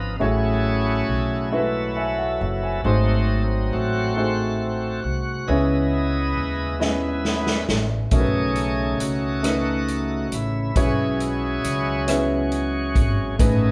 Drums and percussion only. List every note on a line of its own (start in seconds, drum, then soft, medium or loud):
6.81 snare soft
7.25 snare medium
7.47 snare medium
7.69 snare medium
8.11 kick medium
8.11 closed hi-hat medium
8.56 closed hi-hat soft
9.00 closed hi-hat medium
9.44 cross-stick medium
9.44 closed hi-hat medium
9.88 closed hi-hat soft
10.32 closed hi-hat soft
10.76 kick medium
10.76 closed hi-hat medium
11.20 closed hi-hat soft
11.64 closed hi-hat medium
12.08 cross-stick medium
12.08 closed hi-hat medium
12.52 closed hi-hat soft
12.95 kick medium
12.95 closed hi-hat soft
13.39 kick medium
13.39 closed hi-hat medium